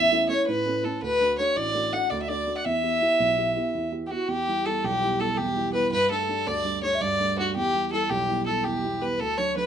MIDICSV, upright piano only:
0, 0, Header, 1, 2, 480
1, 0, Start_track
1, 0, Tempo, 362976
1, 1358, Time_signature, 9, 3, 24, 8
1, 12780, End_track
2, 0, Start_track
2, 0, Title_t, "Upright piano"
2, 0, Program_c, 0, 0
2, 0, Note_on_c, 0, 40, 70
2, 146, Note_on_c, 0, 57, 54
2, 151, Note_on_c, 0, 61, 46
2, 159, Note_on_c, 0, 64, 58
2, 359, Note_off_c, 0, 57, 0
2, 362, Note_off_c, 0, 61, 0
2, 372, Note_off_c, 0, 64, 0
2, 379, Note_off_c, 0, 40, 0
2, 379, Note_on_c, 0, 57, 53
2, 382, Note_on_c, 0, 61, 47
2, 392, Note_on_c, 0, 64, 56
2, 639, Note_on_c, 0, 45, 65
2, 770, Note_off_c, 0, 57, 0
2, 772, Note_off_c, 0, 61, 0
2, 778, Note_off_c, 0, 64, 0
2, 868, Note_on_c, 0, 57, 53
2, 870, Note_on_c, 0, 61, 45
2, 875, Note_on_c, 0, 64, 55
2, 1083, Note_off_c, 0, 57, 0
2, 1087, Note_off_c, 0, 64, 0
2, 1088, Note_off_c, 0, 61, 0
2, 1102, Note_on_c, 0, 57, 47
2, 1104, Note_off_c, 0, 45, 0
2, 1107, Note_on_c, 0, 64, 53
2, 1108, Note_on_c, 0, 61, 46
2, 1300, Note_off_c, 0, 57, 0
2, 1303, Note_off_c, 0, 64, 0
2, 1304, Note_off_c, 0, 61, 0
2, 1351, Note_on_c, 0, 38, 66
2, 1591, Note_on_c, 0, 57, 51
2, 1596, Note_on_c, 0, 62, 45
2, 1602, Note_on_c, 0, 66, 57
2, 1816, Note_off_c, 0, 57, 0
2, 1820, Note_off_c, 0, 38, 0
2, 1821, Note_off_c, 0, 62, 0
2, 1826, Note_off_c, 0, 66, 0
2, 1835, Note_on_c, 0, 57, 53
2, 1841, Note_on_c, 0, 62, 49
2, 1846, Note_on_c, 0, 66, 59
2, 2070, Note_on_c, 0, 33, 60
2, 2220, Note_off_c, 0, 57, 0
2, 2223, Note_off_c, 0, 62, 0
2, 2226, Note_off_c, 0, 66, 0
2, 2303, Note_on_c, 0, 57, 53
2, 2309, Note_on_c, 0, 66, 58
2, 2312, Note_on_c, 0, 62, 48
2, 2526, Note_off_c, 0, 57, 0
2, 2535, Note_off_c, 0, 62, 0
2, 2538, Note_off_c, 0, 33, 0
2, 2542, Note_off_c, 0, 66, 0
2, 2545, Note_on_c, 0, 57, 47
2, 2554, Note_on_c, 0, 62, 48
2, 2562, Note_on_c, 0, 66, 57
2, 2794, Note_on_c, 0, 38, 68
2, 2933, Note_off_c, 0, 57, 0
2, 2939, Note_off_c, 0, 62, 0
2, 2943, Note_off_c, 0, 66, 0
2, 3023, Note_on_c, 0, 57, 51
2, 3026, Note_on_c, 0, 62, 48
2, 3034, Note_on_c, 0, 66, 57
2, 3240, Note_off_c, 0, 57, 0
2, 3244, Note_off_c, 0, 62, 0
2, 3251, Note_off_c, 0, 66, 0
2, 3260, Note_off_c, 0, 38, 0
2, 3260, Note_on_c, 0, 57, 47
2, 3264, Note_on_c, 0, 62, 41
2, 3270, Note_on_c, 0, 66, 54
2, 3458, Note_off_c, 0, 57, 0
2, 3461, Note_off_c, 0, 62, 0
2, 3464, Note_off_c, 0, 66, 0
2, 3509, Note_on_c, 0, 40, 66
2, 3744, Note_on_c, 0, 59, 45
2, 3746, Note_on_c, 0, 64, 43
2, 3750, Note_on_c, 0, 67, 48
2, 3957, Note_off_c, 0, 59, 0
2, 3969, Note_off_c, 0, 67, 0
2, 3970, Note_off_c, 0, 64, 0
2, 3977, Note_off_c, 0, 40, 0
2, 3977, Note_on_c, 0, 59, 51
2, 3989, Note_on_c, 0, 67, 57
2, 3990, Note_on_c, 0, 64, 49
2, 4227, Note_on_c, 0, 35, 62
2, 4368, Note_off_c, 0, 59, 0
2, 4375, Note_off_c, 0, 67, 0
2, 4376, Note_off_c, 0, 64, 0
2, 4463, Note_on_c, 0, 59, 54
2, 4470, Note_on_c, 0, 64, 49
2, 4479, Note_on_c, 0, 67, 57
2, 4690, Note_off_c, 0, 59, 0
2, 4695, Note_off_c, 0, 64, 0
2, 4696, Note_off_c, 0, 35, 0
2, 4699, Note_off_c, 0, 67, 0
2, 4709, Note_on_c, 0, 59, 48
2, 4714, Note_on_c, 0, 64, 45
2, 4719, Note_on_c, 0, 67, 55
2, 4954, Note_on_c, 0, 40, 62
2, 5095, Note_off_c, 0, 59, 0
2, 5098, Note_off_c, 0, 64, 0
2, 5101, Note_off_c, 0, 67, 0
2, 5186, Note_on_c, 0, 59, 54
2, 5186, Note_on_c, 0, 64, 43
2, 5188, Note_on_c, 0, 67, 57
2, 5406, Note_off_c, 0, 59, 0
2, 5413, Note_off_c, 0, 64, 0
2, 5416, Note_off_c, 0, 67, 0
2, 5419, Note_off_c, 0, 40, 0
2, 5425, Note_on_c, 0, 59, 45
2, 5433, Note_on_c, 0, 64, 44
2, 5436, Note_on_c, 0, 67, 47
2, 5621, Note_off_c, 0, 59, 0
2, 5625, Note_off_c, 0, 64, 0
2, 5627, Note_off_c, 0, 67, 0
2, 5663, Note_on_c, 0, 40, 65
2, 5913, Note_on_c, 0, 55, 47
2, 5922, Note_on_c, 0, 59, 44
2, 5927, Note_on_c, 0, 64, 50
2, 6138, Note_off_c, 0, 55, 0
2, 6143, Note_off_c, 0, 59, 0
2, 6147, Note_off_c, 0, 64, 0
2, 6158, Note_on_c, 0, 55, 48
2, 6163, Note_on_c, 0, 59, 43
2, 6167, Note_on_c, 0, 64, 56
2, 6394, Note_on_c, 0, 35, 61
2, 6617, Note_off_c, 0, 55, 0
2, 6624, Note_off_c, 0, 59, 0
2, 6626, Note_off_c, 0, 64, 0
2, 6637, Note_on_c, 0, 55, 46
2, 6646, Note_on_c, 0, 59, 45
2, 6651, Note_on_c, 0, 64, 56
2, 6848, Note_off_c, 0, 55, 0
2, 6852, Note_off_c, 0, 59, 0
2, 6860, Note_off_c, 0, 64, 0
2, 6868, Note_on_c, 0, 55, 50
2, 6872, Note_on_c, 0, 59, 45
2, 6879, Note_on_c, 0, 64, 50
2, 7101, Note_off_c, 0, 40, 0
2, 7120, Note_on_c, 0, 40, 65
2, 7327, Note_off_c, 0, 55, 0
2, 7337, Note_off_c, 0, 59, 0
2, 7338, Note_off_c, 0, 64, 0
2, 7347, Note_on_c, 0, 55, 44
2, 7357, Note_on_c, 0, 59, 44
2, 7358, Note_on_c, 0, 64, 51
2, 7558, Note_off_c, 0, 55, 0
2, 7567, Note_off_c, 0, 59, 0
2, 7572, Note_off_c, 0, 64, 0
2, 7577, Note_on_c, 0, 55, 41
2, 7587, Note_on_c, 0, 59, 41
2, 7592, Note_on_c, 0, 64, 53
2, 7791, Note_off_c, 0, 35, 0
2, 7816, Note_off_c, 0, 40, 0
2, 7818, Note_off_c, 0, 55, 0
2, 7823, Note_off_c, 0, 59, 0
2, 7826, Note_off_c, 0, 64, 0
2, 7826, Note_on_c, 0, 43, 64
2, 8064, Note_on_c, 0, 55, 46
2, 8071, Note_on_c, 0, 57, 46
2, 8081, Note_on_c, 0, 62, 51
2, 8288, Note_off_c, 0, 55, 0
2, 8295, Note_off_c, 0, 57, 0
2, 8298, Note_off_c, 0, 62, 0
2, 8308, Note_on_c, 0, 55, 51
2, 8315, Note_on_c, 0, 57, 45
2, 8318, Note_on_c, 0, 62, 55
2, 8555, Note_on_c, 0, 38, 64
2, 8757, Note_off_c, 0, 55, 0
2, 8765, Note_off_c, 0, 57, 0
2, 8768, Note_off_c, 0, 62, 0
2, 8777, Note_on_c, 0, 55, 47
2, 8785, Note_on_c, 0, 57, 44
2, 8788, Note_on_c, 0, 62, 54
2, 8997, Note_off_c, 0, 55, 0
2, 9009, Note_off_c, 0, 57, 0
2, 9013, Note_off_c, 0, 62, 0
2, 9017, Note_on_c, 0, 55, 52
2, 9028, Note_on_c, 0, 57, 46
2, 9033, Note_on_c, 0, 62, 51
2, 9252, Note_off_c, 0, 43, 0
2, 9272, Note_on_c, 0, 43, 69
2, 9492, Note_off_c, 0, 55, 0
2, 9498, Note_off_c, 0, 57, 0
2, 9500, Note_off_c, 0, 62, 0
2, 9513, Note_on_c, 0, 55, 49
2, 9519, Note_on_c, 0, 62, 53
2, 9520, Note_on_c, 0, 57, 46
2, 9741, Note_off_c, 0, 55, 0
2, 9749, Note_off_c, 0, 57, 0
2, 9753, Note_off_c, 0, 62, 0
2, 9761, Note_on_c, 0, 55, 46
2, 9769, Note_on_c, 0, 57, 44
2, 9773, Note_on_c, 0, 62, 52
2, 9953, Note_off_c, 0, 38, 0
2, 9973, Note_off_c, 0, 43, 0
2, 9992, Note_off_c, 0, 55, 0
2, 9994, Note_on_c, 0, 40, 68
2, 9996, Note_off_c, 0, 57, 0
2, 9998, Note_off_c, 0, 62, 0
2, 10227, Note_on_c, 0, 55, 47
2, 10237, Note_on_c, 0, 59, 41
2, 10239, Note_on_c, 0, 64, 50
2, 10445, Note_off_c, 0, 55, 0
2, 10458, Note_off_c, 0, 59, 0
2, 10463, Note_off_c, 0, 64, 0
2, 10465, Note_on_c, 0, 55, 53
2, 10478, Note_on_c, 0, 59, 47
2, 10483, Note_on_c, 0, 64, 59
2, 10710, Note_on_c, 0, 35, 66
2, 10924, Note_off_c, 0, 59, 0
2, 10925, Note_off_c, 0, 55, 0
2, 10934, Note_off_c, 0, 64, 0
2, 10944, Note_on_c, 0, 59, 48
2, 10945, Note_on_c, 0, 55, 54
2, 10954, Note_on_c, 0, 64, 58
2, 11170, Note_off_c, 0, 55, 0
2, 11182, Note_off_c, 0, 64, 0
2, 11184, Note_off_c, 0, 59, 0
2, 11190, Note_on_c, 0, 55, 51
2, 11202, Note_on_c, 0, 64, 57
2, 11204, Note_on_c, 0, 59, 45
2, 11421, Note_off_c, 0, 40, 0
2, 11441, Note_on_c, 0, 40, 61
2, 11660, Note_off_c, 0, 55, 0
2, 11666, Note_off_c, 0, 64, 0
2, 11667, Note_off_c, 0, 59, 0
2, 11680, Note_on_c, 0, 55, 45
2, 11689, Note_on_c, 0, 59, 45
2, 11691, Note_on_c, 0, 64, 59
2, 11894, Note_off_c, 0, 55, 0
2, 11904, Note_off_c, 0, 59, 0
2, 11909, Note_off_c, 0, 64, 0
2, 11914, Note_on_c, 0, 55, 47
2, 11924, Note_on_c, 0, 59, 40
2, 11929, Note_on_c, 0, 64, 48
2, 12113, Note_off_c, 0, 35, 0
2, 12139, Note_off_c, 0, 40, 0
2, 12149, Note_off_c, 0, 55, 0
2, 12155, Note_off_c, 0, 59, 0
2, 12157, Note_off_c, 0, 64, 0
2, 12169, Note_on_c, 0, 38, 62
2, 12401, Note_on_c, 0, 54, 43
2, 12401, Note_on_c, 0, 57, 47
2, 12406, Note_on_c, 0, 62, 52
2, 12614, Note_off_c, 0, 57, 0
2, 12615, Note_off_c, 0, 54, 0
2, 12618, Note_off_c, 0, 62, 0
2, 12634, Note_on_c, 0, 54, 52
2, 12634, Note_on_c, 0, 57, 45
2, 12638, Note_on_c, 0, 62, 57
2, 12780, Note_off_c, 0, 38, 0
2, 12780, Note_off_c, 0, 54, 0
2, 12780, Note_off_c, 0, 57, 0
2, 12780, Note_off_c, 0, 62, 0
2, 12780, End_track
0, 0, End_of_file